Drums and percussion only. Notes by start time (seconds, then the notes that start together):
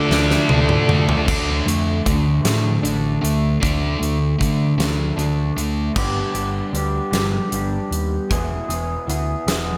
0.11 snare
0.30 snare
0.49 high tom
0.69 mid tom
0.89 mid tom
1.09 floor tom
1.28 kick, crash
1.68 closed hi-hat
2.06 kick, closed hi-hat
2.45 snare, closed hi-hat
2.85 closed hi-hat
3.25 closed hi-hat
3.63 kick, closed hi-hat
4.03 closed hi-hat
4.41 kick, closed hi-hat
4.80 snare, closed hi-hat
5.19 closed hi-hat
5.58 closed hi-hat
5.96 kick, crash
6.35 closed hi-hat
6.75 closed hi-hat
7.13 snare, closed hi-hat
7.52 closed hi-hat
7.92 closed hi-hat
8.31 kick, closed hi-hat
8.70 closed hi-hat
9.10 closed hi-hat
9.48 snare, closed hi-hat